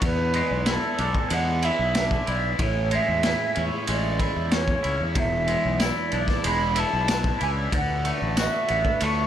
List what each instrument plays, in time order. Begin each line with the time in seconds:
Already playing: string section D4 D5
0.01 fingered electric bass E2, clean electric guitar E2, string section B3 E4 G#5, flute B4, kick, ride
0.34 clean electric guitar G#3, ride
0.51 fingered electric bass B1
0.66 clean electric guitar E4, flute A4, snare, ride
0.98 fingered electric bass B1, clean electric guitar D4, ride
1.15 kick
1.30 fingered electric bass E2, clean electric guitar G#3, flute F#5, ride
1.62 clean electric guitar E4, flute E5, ride
1.79 fingered electric bass B1
1.95 clean electric guitar D4, snare, ride
2.11 kick
2.27 fingered electric bass B1, clean electric guitar E4, flute D5, ride
2.58 fingered electric bass A1, clean electric guitar A2, string section C#3 E5, flute C#5, kick, ride
2.91 clean electric guitar G#3, flute E5, ride
3.08 fingered electric bass E2
3.23 clean electric guitar E4, snare, ride
3.55 fingered electric bass E2, clean electric guitar C#4, ride
3.87 fingered electric bass A1, clean electric guitar G#3, flute D5, ride
4.19 clean electric guitar E4, kick, ride
4.36 fingered electric bass E2
4.51 clean electric guitar C#4, snare, ride
4.56 flute C#5
4.68 kick
4.83 fingered electric bass C#2, clean electric guitar E4, ride
5.01 fingered electric bass E2
5.15 fingered electric bass E1, clean electric guitar E2, string section G#3 D4 E4 B4 E5, kick, ride
5.19 flute E5
5.47 clean electric guitar G#3, ride
5.65 fingered electric bass B1
5.80 clean electric guitar E4, flute D5, snare, ride, tambourine
6.12 fingered electric bass B1, clean electric guitar D4, ride
6.28 kick, snare
6.44 fingered electric bass E1, clean electric guitar G#3, flute B5, ride
6.75 clean electric guitar E4, flute A5, ride
6.93 fingered electric bass B1
7.08 clean electric guitar D4, snare, ride, tambourine
7.24 kick
7.39 fingered electric bass C#2, clean electric guitar E4, flute G#5, ride
7.71 fingered electric bass D2, clean electric guitar D3, string section A3 F#4, kick, ride
7.76 flute F#5
8.05 clean electric guitar A3, ride
8.22 fingered electric bass A1
8.37 clean electric guitar F#4, flute E5, snare, ride, tambourine
8.68 fingered electric bass A1, clean electric guitar B3, ride
8.85 kick
9.00 fingered electric bass D2, clean electric guitar A3, flute C#6, ride